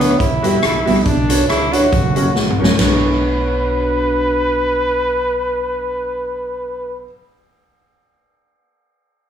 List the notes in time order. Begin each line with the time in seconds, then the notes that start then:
Already playing: D2 B3
0.00 D4 F#4 B4 C#5, closed hi-hat
0.19 E2 E4, kick, closed hi-hat
0.42 G3 B3 F#4 G4 E5, closed hi-hat
0.63 B1, cross-stick, closed hi-hat
0.85 A#1 G3 B3 F#4 G4 E5, open hi-hat
1.05 B1 D4, kick, closed hi-hat
1.28 D4 F#4 B4 C#5, closed hi-hat
1.49 C#2 E4, cross-stick, closed hi-hat
1.72 D4 F#4 B4 C#5, closed hi-hat
1.93 F#1, kick, closed hi-hat
2.16 C#4 F#4 A#4 C#5, closed hi-hat
2.36 A#1, snare
2.50 mid tom
2.58 A#1 C#4 F#4 A#4 C#5
2.64 snare
2.78 B1 D4 F#4 B4 C#5, snare, ride bell
2.83 C#5